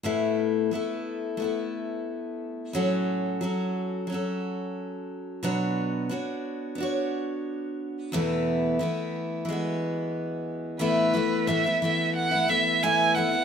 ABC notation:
X:1
M:4/4
L:1/16
Q:1/4=89
K:A
V:1 name="Violin"
z16 | z16 | z16 | z16 |
B4 e2 e2 f2 e2 g2 f2 |]
V:2 name="Steel-string acoustic guitar"
[A,,A,B,EA]4 [A,B,EA]4 [A,B,EA]8 | [A,,F,CFA]4 [F,CFA]4 [F,CFA]8 | [B,,F,B,DFc]4 [B,DFc]4 [B,DFc]8 | [E,,B,,E,A,B,E]4 [E,A,B,E]4 [E,G,B,F]8 |
[A,,E,A,B,E]2 [E,A,B,E]2 [A,,E,A,B,E] [A,B,E] [E,A,B,E]3 [A,B,E] [E,A,B,E]2 [A,,E,A,B,E]2 [E,A,B,E] [A,B,E] |]